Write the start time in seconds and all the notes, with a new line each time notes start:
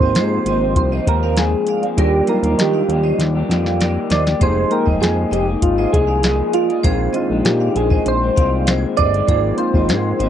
Already playing: A#3 C4 D#4 F4 G4 C5
0.00 G#1 A#3 C4 C5 D#5, kick
0.05 F3
0.15 G#2 F3 G#4 C5, snare, closed hi-hat
0.19 A#3 C4
0.45 G#1 G#2 F3 A#3 C5 D#5, closed hi-hat
0.49 C4
0.61 F3 A#3 C4
0.76 C2 C5, kick, closed hi-hat
0.92 F3 A#3 C4 C5 D#5
1.06 D#2 G#2 F3 A#3 C4 A#4, kick, closed hi-hat
1.22 F3 A#3 C4 D5 F5
1.37 G#2 F3 A#3 C4 G#4, snare, closed hi-hat
1.67 D5 F5, closed hi-hat
1.82 F3 A#3 C4, closed hi-hat
1.96 D#2 D#3 G3 A#3 D4 F4 G4 A#4 D5, kick, closed hi-hat
2.27 F#3 A#3 D#4 F4 A#4 C5 D#5, closed hi-hat
2.34 G3
2.43 D#2 A#3 D4 G4, closed hi-hat
2.58 D#3 A#3 D4 G4, snare, closed hi-hat
2.74 D5 F5
2.89 D#2 D#3 A#3 D4, closed hi-hat
2.93 G4
3.04 C5 D#5
3.19 D#2, snare, closed hi-hat
3.35 A#3 D4 G4
3.49 F2 D#3 A#3 D4 G4 D5 F5, snare, closed hi-hat
3.66 snare
3.80 D#3 A#3 D4 G4 A#4 D5, snare, closed hi-hat
4.10 D#2 C5 D5 D#5, snare, closed hi-hat
4.26 A#3 D4 G4, snare, closed hi-hat
4.39 F1 F3 G#3 A#3 D#4 G4 G#4 C5, kick, closed hi-hat
4.70 G#3 A#3 D#4 A#4 G5, closed hi-hat
4.85 F1 A#3 D#4 G#4 C5 D#5, kick
5.01 F2 F3 A#3 D#4 G#4 C5, snare, closed hi-hat
5.31 F1 F3 A#3 D#4 G4 G#4 C5 D#5, closed hi-hat
5.46 A#3 D#4 G#4
5.62 G#1 F4, kick, closed hi-hat
5.76 A#3 D#4 G#4 C5 D#5
5.92 C2 F3 A#3 D#4 G#4, kick, closed hi-hat
6.07 D5 F5
6.23 F3 A#3 D#4 G#4, snare, closed hi-hat
6.53 F4 D5 F5, closed hi-hat
6.68 A#3 D#4 G#4, closed hi-hat
6.83 A#1 A#2 D#3 G#3 C4 D#4 F4 G#4 C5, kick, closed hi-hat
7.13 G#3 C4 D4 F4 C5 D#5, closed hi-hat
7.22 D#4
7.29 A#1 D#3 G#3 C4
7.44 A#2 D#3 G#3 C4 G4, snare, closed hi-hat
7.60 D5 F5
7.74 A#1 A#2 D#3 G#3 C4 G#4, closed hi-hat
7.90 D#3 G#3 C4 C5 D#5, kick
8.06 A#1 C5, closed hi-hat
8.21 D#3 G#3 C4
8.36 C2 A#2 D#3 G#3 C4 D5 F5, kick, closed hi-hat
8.66 A#2 D#3 G#3 C4 G#4 C5, snare, closed hi-hat
8.97 G1 C5 D5 D#5, kick, closed hi-hat
9.13 D#3 G#3 C4, closed hi-hat
9.27 G#1 G#2 F3 A#3 C4 D#4 F4 G#4 C5, kick, closed hi-hat
9.57 A#3 C4 D#4 F4 C5, closed hi-hat
9.74 G#1 F3 A#3 C4 C5 D#5, kick
9.88 G#2 F3 A#3 C4 G#4 C5, snare, closed hi-hat
10.18 G#1 G#2 F3 A#3 C4 C5 D#5, closed hi-hat